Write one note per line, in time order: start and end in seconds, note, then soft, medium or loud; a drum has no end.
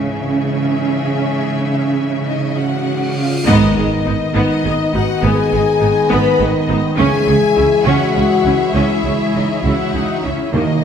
0.00 0.45 C#2 soft
0.00 3.13 G#2 medium
0.00 3.23 C#3 medium
0.00 3.14 E3 medium
0.00 2.28 G#3 soft
0.00 2.24 C#4 medium
0.00 3.23 C#4 soft
0.00 2.24 G#4 soft
0.00 3.24 E5 soft
1.67 cymbal swell soft
2.27 2.55 D#4 medium
2.27 2.56 D#5 soft
2.58 3.18 F#4 medium
2.58 3.18 F#5 soft
3.17 3.47 F4 medium
3.17 3.48 F5 soft
3.47 3.75 G#1 medium
3.47 3.75 G#2 medium
3.47 6.94 D#3 medium
3.47 6.95 G#3 medium
3.47 3.75 B3 medium
3.47 6.94 B3 medium
3.47 4.19 D#4 medium
3.47 6.95 D#4 medium
3.47 6.95 B4 medium
3.47 4.32 D#5 medium
3.47 6.95 D#5 medium
3.47 impact medium
3.77 3.86 G#1 soft
3.77 3.85 G#2 soft
3.77 3.85 B3 soft
3.77 3.85 G#4 soft
4.06 4.15 G#1 soft
4.06 4.15 G#2 soft
4.06 4.14 B3 soft
4.06 4.14 D#4 medium
4.34 4.44 G#1 medium
4.34 4.44 G#2 medium
4.34 4.63 B3 medium
4.34 4.93 D#4 medium
4.34 4.94 D#5 medium
4.65 4.73 G#1 medium
4.65 4.73 G#2 soft
4.65 4.73 B3 medium
4.65 4.73 G#4 medium
4.94 5.03 G#1 soft
4.94 5.03 G#2 medium
4.94 5.02 B3 medium
4.94 5.02 D#4 medium
4.94 5.23 F#4 medium
4.94 5.24 F#5 medium
5.23 5.32 G#1 medium
5.23 5.32 G#2 medium
5.23 5.51 B3 medium
5.23 6.11 G#4 medium
5.23 6.11 G#5 medium
5.51 5.62 G#1 medium
5.51 5.62 G#2 soft
5.51 5.60 B3 soft
5.51 5.59 G#4 soft
5.81 5.92 G#1 medium
5.81 5.91 G#2 soft
5.81 5.89 B3 medium
5.81 5.89 D#4 soft
6.10 6.21 G#1 medium
6.10 6.20 G#2 medium
6.10 6.37 B3 medium
6.10 6.41 B4 medium
6.10 6.41 B5 medium
6.38 6.49 G#1 medium
6.38 6.49 G#2 medium
6.38 6.46 B3 medium
6.38 6.46 G#4 medium
6.69 6.78 G#1 medium
6.69 6.78 G#2 medium
6.69 6.77 B3 medium
6.69 6.77 D#4 medium
6.97 7.06 C#2 medium
6.97 7.07 C#3 medium
6.97 10.21 E3 medium
6.97 10.51 G#3 medium
6.97 10.21 G#3 medium
6.97 7.25 C#4 medium
6.97 10.54 E4 medium
6.97 7.83 G#4 medium
6.97 10.55 G#4 medium
6.97 10.54 C#5 medium
6.97 10.30 E5 medium
6.97 7.83 G#5 medium
7.27 7.36 C#2 medium
7.27 7.36 C#3 soft
7.27 7.35 C#4 medium
7.27 7.35 G#4 soft
7.56 7.66 C#2 soft
7.56 7.65 C#3 soft
7.56 7.64 C#4 soft
7.56 7.64 E4 medium
7.86 7.95 C#2 medium
7.86 7.95 C#3 medium
7.86 8.13 C#4 medium
7.86 8.75 F#4 medium
7.86 8.75 F#5 medium
8.15 8.24 C#2 soft
8.15 8.23 C#3 soft
8.15 8.25 C#4 soft
8.15 8.24 G#4 soft
8.45 8.53 C#2 soft
8.45 8.54 C#3 soft
8.45 8.54 C#4 medium
8.45 8.54 E4 soft
8.74 8.83 C#2 soft
8.74 8.84 C#3 medium
8.74 9.03 C#4 medium
8.74 9.34 E4 medium
8.74 9.33 E5 soft
9.04 9.13 C#2 soft
9.04 9.14 C#3 soft
9.04 9.12 C#4 soft
9.04 9.13 G#4 soft
9.34 9.43 C#2 soft
9.34 9.43 C#3 soft
9.34 9.43 C#4 soft
9.34 9.64 D#4 medium
9.34 9.44 E4 soft
9.34 9.64 D#5 soft
9.63 9.73 C#2 soft
9.63 9.73 C#3 soft
9.63 9.92 E4 medium
9.63 10.23 F#4 medium
9.63 10.22 F#5 medium
9.93 10.02 C#2 soft
9.93 10.03 C#3 soft
9.93 10.24 D#4 soft
10.23 10.32 C#2 soft
10.23 10.32 C#3 soft
10.23 10.55 C#4 soft
10.23 10.54 E4 soft
10.23 10.54 E5 soft
10.53 10.62 D#2 soft
10.53 10.84 D#3 soft
10.53 10.84 D#3 medium
10.53 10.62 D#3 soft
10.53 10.84 F#3 soft
10.53 10.81 A#3 soft
10.53 10.84 A#3 medium
10.53 10.84 D#4 medium
10.53 10.84 D#4 soft
10.53 10.84 F#4 soft
10.53 10.84 D#5 medium
10.53 10.84 D#5 soft